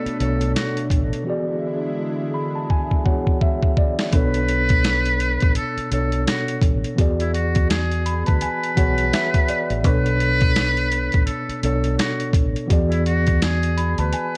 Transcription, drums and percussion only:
0.06 closed hi-hat medium
0.20 closed hi-hat medium
0.41 closed hi-hat medium
0.56 snare loud
0.56 closed hi-hat loud
0.77 closed hi-hat medium
0.90 kick medium
0.90 closed hi-hat medium
1.13 closed hi-hat medium
2.70 kick medium
2.91 kick medium
3.06 kick medium
3.27 kick medium
3.41 kick medium
3.63 kick medium
3.77 kick loud
3.99 snare loud
4.13 kick loud
4.13 closed hi-hat medium
4.34 closed hi-hat medium
4.48 closed hi-hat medium
4.69 kick medium
4.69 closed hi-hat medium
4.84 snare loud
4.84 closed hi-hat medium
5.05 closed hi-hat medium
5.20 closed hi-hat medium
5.40 kick loud
5.40 closed hi-hat medium
5.55 closed hi-hat medium
5.78 closed hi-hat medium
5.92 closed hi-hat medium
6.12 closed hi-hat medium
6.27 snare loud
6.27 closed hi-hat loud
6.48 closed hi-hat medium
6.62 kick loud
6.62 closed hi-hat medium
6.84 closed hi-hat medium
6.98 kick loud
6.98 closed hi-hat medium
7.20 closed hi-hat medium
7.34 closed hi-hat medium
7.55 kick medium
7.55 closed hi-hat medium
7.70 snare loud
7.70 closed hi-hat medium
7.92 closed hi-hat medium
8.06 closed hi-hat medium
8.26 kick medium
8.26 closed hi-hat medium
8.41 closed hi-hat medium
8.64 closed hi-hat medium
8.77 kick loud
8.77 closed hi-hat medium
8.98 closed hi-hat medium
9.13 snare loud
9.13 closed hi-hat loud
9.34 kick loud
9.34 closed hi-hat medium
9.48 closed hi-hat medium
9.70 closed hi-hat medium
9.84 kick loud
9.84 closed hi-hat loud
10.06 closed hi-hat medium
10.20 closed hi-hat medium
10.41 kick medium
10.41 closed hi-hat medium
10.56 snare loud
10.56 closed hi-hat loud
10.77 closed hi-hat medium
10.92 closed hi-hat medium
11.12 kick loud
11.12 closed hi-hat medium
11.27 closed hi-hat medium
11.50 closed hi-hat medium
11.63 closed hi-hat medium
11.84 closed hi-hat medium
11.99 snare loud
11.99 closed hi-hat loud
12.20 closed hi-hat medium
12.33 kick loud
12.33 closed hi-hat medium
12.56 closed hi-hat medium
12.70 kick loud
12.70 closed hi-hat medium
12.92 closed hi-hat medium
13.06 closed hi-hat medium
13.27 kick medium
13.27 closed hi-hat medium
13.42 snare loud
13.42 closed hi-hat medium
13.63 closed hi-hat medium
13.78 closed hi-hat medium
13.98 closed hi-hat medium
14.12 closed hi-hat medium

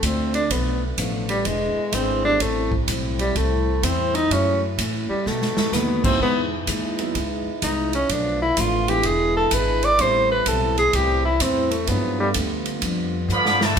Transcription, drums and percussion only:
0.03 kick soft
0.03 hi-hat pedal medium
0.03 ride medium
0.34 ride soft
0.50 kick soft
0.50 ride medium
0.98 kick soft
0.98 hi-hat pedal medium
0.98 ride medium
1.29 ride medium
1.45 kick soft
1.45 ride medium
1.93 kick soft
1.93 hi-hat pedal medium
1.93 ride medium
2.40 kick soft
2.40 ride medium
2.72 kick medium
2.88 kick soft
2.88 hi-hat pedal medium
2.88 ride medium
3.19 ride soft
3.36 kick soft
3.36 ride medium
3.83 kick soft
3.83 hi-hat pedal medium
3.83 ride medium
4.15 ride soft
4.31 kick soft
4.31 ride medium
4.78 kick soft
4.78 hi-hat pedal medium
4.78 ride medium
5.26 snare medium
5.42 snare medium
5.57 snare medium
5.73 snare medium
5.73 hi-hat pedal medium
6.04 kick medium
6.04 crash medium
6.20 kick soft
6.67 kick soft
6.67 hi-hat pedal medium
6.67 ride medium
6.99 ride soft
7.15 kick soft
7.15 ride medium
7.62 kick soft
7.62 hi-hat pedal medium
7.62 ride medium
7.93 ride soft
8.09 kick soft
8.09 ride medium
8.57 kick soft
8.57 hi-hat pedal medium
8.57 ride medium
8.88 ride medium
9.03 kick soft
9.03 ride medium
9.51 kick soft
9.51 hi-hat pedal medium
9.51 ride medium
9.83 ride medium
9.99 kick soft
9.99 ride medium
10.46 kick soft
10.46 hi-hat pedal medium
10.46 ride medium
10.78 ride soft
10.93 kick soft
10.93 ride medium
11.40 kick soft
11.40 hi-hat pedal medium
11.40 ride medium
11.71 ride soft
11.87 kick soft
11.87 ride medium
12.34 kick soft
12.34 hi-hat pedal medium
12.34 ride medium
12.66 ride soft
12.82 kick soft
12.82 ride medium
13.30 hi-hat pedal medium
13.46 snare medium
13.61 snare medium

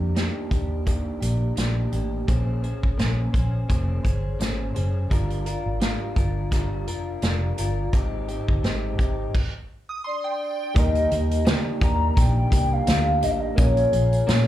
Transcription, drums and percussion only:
0.16 snare medium
0.16 closed hi-hat medium
0.51 kick medium
0.51 closed hi-hat medium
0.87 kick medium
0.87 closed hi-hat medium
1.22 closed hi-hat medium
1.57 snare medium
1.57 closed hi-hat loud
1.92 closed hi-hat medium
2.28 kick loud
2.28 closed hi-hat medium
2.64 closed hi-hat medium
2.83 kick medium
2.99 snare loud
2.99 closed hi-hat medium
3.34 kick medium
3.34 closed hi-hat medium
3.70 kick medium
3.70 closed hi-hat medium
4.05 kick medium
4.05 closed hi-hat medium
4.40 snare loud
4.40 closed hi-hat loud
4.76 closed hi-hat medium
5.11 kick medium
5.11 closed hi-hat medium
5.30 closed hi-hat medium
5.46 closed hi-hat medium
5.81 snare medium
5.81 closed hi-hat medium
6.16 kick medium
6.16 closed hi-hat medium
6.52 kick medium
6.52 snare soft
6.52 closed hi-hat medium
6.88 closed hi-hat medium
7.22 snare loud
7.22 closed hi-hat medium
7.58 closed hi-hat medium
7.93 kick loud
7.93 closed hi-hat medium
8.28 closed hi-hat medium
8.48 kick medium
8.64 snare medium
8.64 closed hi-hat medium
8.99 kick medium
8.99 closed hi-hat medium
9.35 kick loud
9.35 crash medium
10.76 kick loud
10.76 closed hi-hat medium
10.95 closed hi-hat medium
11.11 closed hi-hat medium
11.31 closed hi-hat medium
11.46 snare loud
11.46 closed hi-hat medium
11.81 kick loud
11.81 closed hi-hat medium
12.17 kick loud
12.17 snare soft
12.17 closed hi-hat loud
12.52 kick loud
12.52 closed hi-hat medium
12.87 snare loud
12.87 closed hi-hat loud
13.22 closed hi-hat medium
13.58 kick loud
13.58 closed hi-hat medium
13.77 closed hi-hat medium
13.93 closed hi-hat medium
14.13 closed hi-hat medium
14.28 snare loud
14.28 closed hi-hat medium

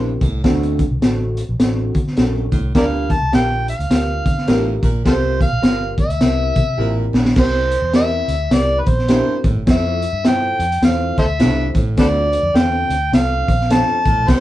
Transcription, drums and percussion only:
0.21 kick medium
0.21 closed hi-hat medium
0.44 kick loud
0.44 snare loud
0.44 closed hi-hat medium
0.63 closed hi-hat soft
0.79 kick medium
0.79 closed hi-hat medium
1.02 snare loud
1.02 closed hi-hat medium
1.37 closed hi-hat medium
1.60 snare loud
1.60 closed hi-hat loud
1.95 kick medium
1.95 closed hi-hat medium
2.07 snare soft
2.17 snare loud
2.17 closed hi-hat medium
2.52 kick medium
2.52 closed hi-hat medium
2.75 kick loud
2.75 snare loud
2.75 closed hi-hat medium
3.10 kick medium
3.10 closed hi-hat medium
3.33 snare loud
3.33 closed hi-hat medium
3.68 closed hi-hat medium
3.80 closed hi-hat medium
3.91 snare loud
3.91 closed hi-hat loud
4.26 kick medium
4.26 closed hi-hat medium
4.38 snare soft
4.48 snare loud
4.48 closed hi-hat medium
4.83 kick medium
4.83 closed hi-hat medium
5.06 kick loud
5.06 snare loud
5.06 closed hi-hat medium
5.41 kick loud
5.41 closed hi-hat medium
5.63 snare loud
5.63 closed hi-hat medium
5.98 kick medium
5.98 closed hi-hat medium
6.10 closed hi-hat medium
6.21 snare loud
6.21 closed hi-hat loud
6.56 kick loud
6.56 closed hi-hat medium
7.14 snare loud
7.25 snare loud
7.36 kick loud
7.36 snare loud
7.36 crash loud
7.71 closed hi-hat medium
7.94 snare loud
7.94 closed hi-hat medium
8.28 closed hi-hat medium
8.51 snare loud
8.51 closed hi-hat loud
8.86 kick medium
8.86 closed hi-hat medium
8.99 snare soft
9.08 snare loud
9.08 closed hi-hat medium
9.44 kick loud
9.44 closed hi-hat medium
9.67 kick loud
9.67 snare loud
9.67 closed hi-hat medium
10.02 closed hi-hat medium
10.25 snare loud
10.25 closed hi-hat medium
10.60 closed hi-hat medium
10.72 closed hi-hat medium
10.83 snare loud
10.83 closed hi-hat loud
11.18 kick loud
11.18 closed hi-hat medium
11.40 snare loud
11.40 closed hi-hat medium
11.75 kick medium
11.75 closed hi-hat medium
11.97 kick loud
11.97 snare loud
11.97 closed hi-hat loud
12.33 closed hi-hat medium
12.56 snare loud
12.56 closed hi-hat medium
12.90 closed hi-hat medium
13.13 snare loud
13.13 closed hi-hat loud
13.48 kick medium
13.48 closed hi-hat medium
13.61 snare soft
13.70 snare loud
13.70 closed hi-hat medium
14.05 kick medium
14.05 closed hi-hat medium
14.28 kick loud
14.28 snare loud
14.28 closed hi-hat loud

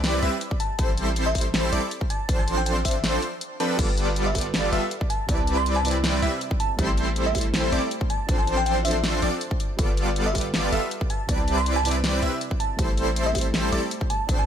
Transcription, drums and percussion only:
0.04 snare loud
0.04 closed hi-hat medium
0.23 closed hi-hat medium
0.41 closed hi-hat medium
0.51 kick loud
0.60 closed hi-hat medium
0.79 kick loud
0.79 closed hi-hat medium
0.97 closed hi-hat medium
1.16 closed hi-hat medium
1.35 kick medium
1.35 closed hi-hat medium
1.35 open hi-hat medium
1.41 closed hi-hat medium
1.54 snare loud
1.54 closed hi-hat medium
1.73 closed hi-hat medium
1.91 closed hi-hat medium
2.01 kick loud
2.10 closed hi-hat medium
2.29 kick loud
2.29 closed hi-hat medium
2.48 closed hi-hat medium
2.66 closed hi-hat medium
2.85 kick medium
2.85 closed hi-hat medium
2.85 open hi-hat loud
2.91 closed hi-hat medium
3.04 snare loud
3.04 closed hi-hat medium
3.22 closed hi-hat medium
3.41 closed hi-hat medium
3.60 closed hi-hat medium
3.79 kick loud
3.79 closed hi-hat medium
3.79 crash medium
3.98 closed hi-hat medium
4.16 closed hi-hat medium
4.35 kick medium
4.35 closed hi-hat medium
4.35 open hi-hat medium
4.41 closed hi-hat medium
4.54 snare loud
4.54 closed hi-hat medium
4.73 closed hi-hat medium
4.91 closed hi-hat medium
5.01 kick loud
5.10 closed hi-hat medium
5.29 kick loud
5.29 closed hi-hat medium
5.47 closed hi-hat medium
5.66 closed hi-hat medium
5.85 closed hi-hat medium
5.85 open hi-hat medium
5.91 closed hi-hat medium
6.04 snare loud
6.04 closed hi-hat medium
6.22 closed hi-hat medium
6.41 closed hi-hat medium
6.51 kick loud
6.60 closed hi-hat medium
6.79 kick loud
6.79 closed hi-hat medium
6.97 closed hi-hat medium
7.16 closed hi-hat medium
7.35 kick medium
7.35 closed hi-hat medium
7.35 open hi-hat medium
7.41 closed hi-hat medium
7.54 snare loud
7.54 closed hi-hat medium
7.72 closed hi-hat medium
7.91 closed hi-hat medium
8.01 kick loud
8.10 closed hi-hat medium
8.29 kick loud
8.29 closed hi-hat medium
8.47 closed hi-hat medium
8.66 closed hi-hat medium
8.85 closed hi-hat medium
8.85 open hi-hat medium
8.91 closed hi-hat medium
9.04 snare loud
9.04 closed hi-hat medium
9.22 closed hi-hat medium
9.41 closed hi-hat medium
9.51 kick loud
9.60 closed hi-hat medium
9.79 kick loud
9.79 closed hi-hat medium
9.97 closed hi-hat medium
10.16 closed hi-hat medium
10.35 kick medium
10.35 closed hi-hat medium
10.35 open hi-hat medium
10.41 closed hi-hat medium
10.54 snare loud
10.54 closed hi-hat medium
10.73 closed hi-hat medium
10.91 closed hi-hat medium
11.01 kick loud
11.10 closed hi-hat medium
11.29 kick loud
11.29 closed hi-hat medium
11.48 closed hi-hat medium
11.66 closed hi-hat medium
11.85 closed hi-hat medium
11.85 open hi-hat loud
11.91 closed hi-hat medium
12.04 snare loud
12.04 closed hi-hat medium
12.23 closed hi-hat medium
12.41 closed hi-hat medium
12.51 kick loud
12.60 closed hi-hat medium
12.79 kick loud
12.79 closed hi-hat medium
12.98 closed hi-hat medium
13.16 closed hi-hat medium
13.35 kick medium
13.35 closed hi-hat medium
13.35 open hi-hat loud
13.41 closed hi-hat medium
13.54 snare loud
13.54 closed hi-hat medium
13.73 closed hi-hat medium
13.91 closed hi-hat medium
14.01 kick loud
14.10 closed hi-hat medium
14.29 kick loud
14.29 closed hi-hat medium

